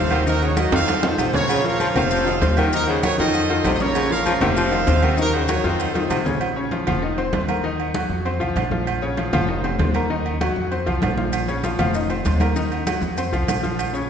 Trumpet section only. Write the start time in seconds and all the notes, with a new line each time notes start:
Already playing: A4 C5 F5
0.28 D#4 F#4 A#4
0.43 C#5
0.58 D#5
0.74 A4 C5 F5
1.35 F4 A#4 C#5
1.66 A#4 C#5 F5
1.96 A4 C5 F5
2.73 D#4 F#4 A#4
2.88 C5
3.05 C#5
3.20 A4 C5 D#5
3.74 D#5
3.81 F4 A#4 C#5
4.12 A#4 C#5 F5
4.43 A4 C5 F5
5.20 D#4 F#4 A#4
5.34 C5
5.49 C#5
5.65 D#4 A4 C5